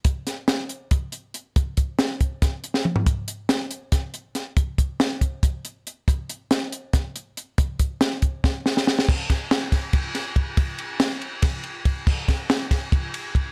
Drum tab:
CC |--------------|--------------|--------------|--------------|
RD |--------------|--------------|--------------|--------------|
HH |x-x-x-x-x-x-x-|x-x-x-x-x-x---|x-x-x-x-x-x-x-|x-x-x-x-x-x-x-|
SD |--o-o---------|----o---o--o--|----o---o---o-|----o---------|
T2 |--------------|------------o-|--------------|--------------|
FT |--------------|-------------o|--------------|--------------|
BD |o-------o-----|o-o---o-o-----|o-------o-----|o-o---o-o-----|

CC |--------------|--------------|x-------------|--------------|
RD |--------------|--------------|--x-x-x-x-x-x-|x-x-x-x-x-x-x-|
HH |x-x-x-x-x-x-x-|x-x-x-x-------|--------------|--------------|
SD |----o---o-----|----o---o-oooo|--o-o-o---o---|----o---o-----|
T2 |--------------|--------------|--------------|--------------|
FT |--------------|--------------|--------------|--------------|
BD |o-------o-----|o-o---o-o-----|o-o---o-o---o-|o-------o---o-|

CC |x-------------|
RD |--x-x-x-x-x-x-|
HH |--------------|
SD |--o-o-o-------|
T2 |--------------|
FT |--------------|
BD |o-o---o-o---o-|